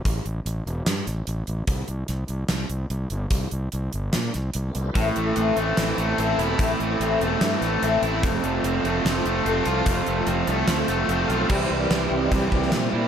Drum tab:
CC |----------------|----------------|----------------|----------------|
HH |x-x-x-x-x-x-x-x-|x-x-x-x-x-x-x-x-|x-x-x-x-x-x-x-x-|x-x-x-x-x-x-x-x-|
SD |--------o-o-----|----o---o-------|--------o-o-----|--------o-------|
BD |o---------------|o---------------|o---------------|o---------------|

CC |----------------|----------------|----------------|x---------------|
HH |x-x-x-x-x-x-x-x-|x-x-x-x-x-x-x-x-|x-x-x-x-x-x-x-x-|----x---x---x---|
SD |--------o-o-----|--------o-------|--------o-o-----|----o------oo---|
BD |o---------------|o---------------|o---------------|o-------o-o-----|